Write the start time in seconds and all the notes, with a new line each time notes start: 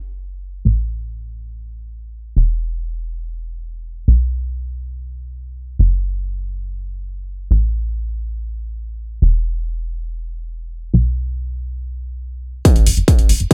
Already playing: F#1
0.65 A1
2.36 E1
4.08 B1
5.79 F#1
7.51 A1
9.22 E1
10.94 B1
12.65 kick, closed hi-hat
12.76 F#1, closed hi-hat
12.86 F#1, open hi-hat
12.97 F#1, closed hi-hat
13.08 kick, closed hi-hat
13.19 F#1, closed hi-hat
13.29 F#1, open hi-hat
13.40 F#1, closed hi-hat